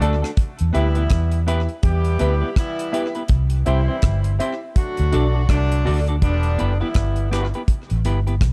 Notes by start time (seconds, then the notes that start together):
Already playing: D3 F#3 A3 D4
0.01 D2 A3 D4 F#4 A4 D5, closed hi-hat
0.22 A3 D4 F#4 A4, cross-stick
0.37 kick, closed hi-hat
0.59 E2, closed hi-hat
0.73 D2 E3 G3 B3 E4 G4 B4 E5, closed hi-hat
0.95 B3 E4 G4 B4, closed hi-hat
1.10 E2, kick, cross-stick, closed hi-hat
1.32 closed hi-hat
1.47 B3 E4 G4 B4 E5, closed hi-hat
1.69 closed hi-hat
1.83 E2 G3 B3 E4 G4, kick, closed hi-hat
2.04 closed hi-hat
2.19 D2 B3 E4 G4 B4 E5, closed hi-hat
2.41 B3 E4 G4 B4
2.56 E3 G3 B3 E4, kick, cross-stick, closed hi-hat
2.79 closed hi-hat
2.92 B3 E4 G4 B4 E5, closed hi-hat
3.15 B3 E4 G4 B4, closed hi-hat
3.28 C2, kick, closed hi-hat
3.50 closed hi-hat
3.66 C2 E3 G3 C4 E4 G4 C5 E5, closed hi-hat
3.88 C4 E4 G4 C5
4.02 G1, kick, cross-stick, closed hi-hat
4.24 closed hi-hat
4.39 C4 E4 G4 C5 E5, closed hi-hat
4.76 F#3 A3 D4 F#4, kick, closed hi-hat
4.97 D2, closed hi-hat
5.12 B1 D4 F#4 A4 D5, closed hi-hat
5.34 D4 F#4 A4 D5
5.49 C2 D3 F#3 A3 D4, kick, cross-stick, closed hi-hat
5.72 closed hi-hat
5.85 D2 D4 F#4 A4 D5, open hi-hat
6.07 D4 F#4 A4 D5, closed hi-hat
6.21 E1 D3 G3 B3 D4, kick, closed hi-hat
6.43 closed hi-hat
6.58 F#1 B3 E4 G4 B4, closed hi-hat
6.79 E3 G3 B3 E4 G4 B4
6.94 G1, kick, cross-stick, closed hi-hat
7.16 closed hi-hat
7.30 G3 B3 E4 G4 B4, cross-stick, closed hi-hat
7.54 B3 E4 G4 B4, closed hi-hat
7.68 kick, closed hi-hat
7.90 A1, closed hi-hat
8.05 G1 B3 E4 G4 B4, closed hi-hat
8.27 B3 E4 G4 B4, closed hi-hat
8.41 B1, kick, cross-stick, closed hi-hat